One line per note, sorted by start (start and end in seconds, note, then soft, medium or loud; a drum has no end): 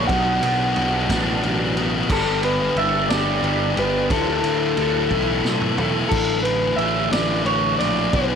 0.00 0.12 D4 medium
0.00 1.09 D4 medium
0.07 0.39 B1 loud
0.07 1.10 B2 loud
0.07 0.75 F#3 loud
0.07 0.78 B3 loud
0.07 1.38 F#5 loud
0.07 kick loud
0.07 ride loud
0.12 0.78 D4 loud
0.12 0.78 F#4 loud
0.42 0.73 B1 medium
0.42 1.74 B3 medium
0.42 ride medium
0.76 1.06 B1 loud
0.76 1.10 F#3 medium
0.76 1.09 B3 medium
0.76 1.10 D4 medium
0.76 1.08 F#4 medium
0.76 ride medium
1.09 1.39 A1 loud
1.09 2.09 B2 medium
1.09 2.09 F#3 medium
1.09 1.78 B3 medium
1.09 1.77 D4 medium
1.09 1.76 F#4 loud
1.09 kick medium
1.09 snare loud
1.09 ride loud
1.42 2.03 A1 medium
1.42 2.10 F#3 medium
1.42 ride medium
1.77 2.09 B3 medium
1.77 2.11 D4 medium
1.77 2.09 F#4 medium
1.77 ride medium
2.10 2.69 G1 loud
2.10 3.11 G2 loud
2.10 3.11 D3 loud
2.10 2.76 G3 loud
2.10 2.77 B3 loud
2.10 2.78 D4 loud
2.10 2.78 G4 loud
2.10 2.44 A4 medium
2.10 kick loud
2.10 crash loud
2.43 3.75 B3 medium
2.43 2.75 B4 medium
2.43 ride medium
2.76 3.06 G1 loud
2.76 3.10 G3 medium
2.76 3.10 B3 medium
2.76 3.11 D4 medium
2.76 3.09 G4 medium
2.76 4.77 A4 medium
2.76 3.09 E5 loud
2.76 ride medium
3.09 3.40 G1 medium
3.09 4.10 G2 medium
3.09 4.10 D3 medium
3.09 3.78 G3 medium
3.09 3.78 B3 medium
3.09 3.78 D4 medium
3.09 3.76 G4 loud
3.09 3.79 D5 medium
3.09 snare loud
3.09 ride loud
3.43 3.73 G1 medium
3.43 4.10 G3 medium
3.43 ride medium
3.77 4.07 G1 medium
3.77 4.10 G3 medium
3.77 4.10 B3 medium
3.77 4.13 D4 medium
3.77 4.09 G4 medium
3.77 4.11 B4 loud
3.77 ride medium
4.10 4.40 D2 loud
4.10 4.77 D3 loud
4.10 4.78 A3 loud
4.10 4.78 E4 loud
4.10 5.75 A4 medium
4.10 4.79 A4 loud
4.10 kick loud
4.10 ride loud
4.44 4.74 D2 medium
4.44 5.78 A3 medium
4.44 ride medium
4.77 5.07 D2 medium
4.77 5.12 D3 medium
4.77 5.11 A3 medium
4.77 5.11 E4 medium
4.77 5.10 A4 medium
4.77 ride medium
5.11 5.41 B1 loud
5.11 6.11 D3 medium
5.11 5.79 A3 medium
5.11 5.78 E4 medium
5.11 5.78 A4 medium
5.11 kick medium
5.11 high tom medium
5.44 6.04 B1 medium
5.44 6.12 D3 medium
5.44 snare medium
5.62 mid tom medium
5.78 6.11 A3 medium
5.78 6.10 E4 medium
5.78 6.10 A4 medium
5.78 floor tom loud
6.09 6.71 A1 loud
6.09 7.12 A2 loud
6.09 6.42 A4 loud
6.09 kick loud
6.09 crash loud
6.13 6.78 D3 loud
6.13 6.79 A3 loud
6.13 6.81 D4 loud
6.13 6.80 E4 loud
6.43 6.79 B4 medium
6.43 ride medium
6.76 7.07 A1 loud
6.76 7.13 D3 medium
6.76 7.13 A3 medium
6.76 7.09 E5 loud
6.76 ride medium
6.81 7.13 D4 medium
6.81 7.12 E4 loud
7.12 7.42 A1 medium
7.12 8.12 A2 medium
7.12 8.12 D3 medium
7.12 7.81 A3 medium
7.12 7.81 D4 medium
7.12 7.79 E4 medium
7.12 7.46 D5 medium
7.12 snare loud
7.12 ride loud
7.46 7.75 A1 medium
7.46 7.78 C#5 loud
7.46 ride medium
7.79 8.09 A#1 loud
7.79 8.12 A3 medium
7.79 8.14 D4 medium
7.79 8.11 E4 medium
7.79 8.13 D5 loud
7.79 ride medium
8.13 8.35 B1 loud
8.13 8.35 B2 medium
8.13 8.35 F#3 loud
8.13 8.35 B3 loud
8.13 8.35 D4 loud
8.13 8.35 F#4 loud
8.13 8.35 B4 medium
8.13 kick loud
8.13 ride loud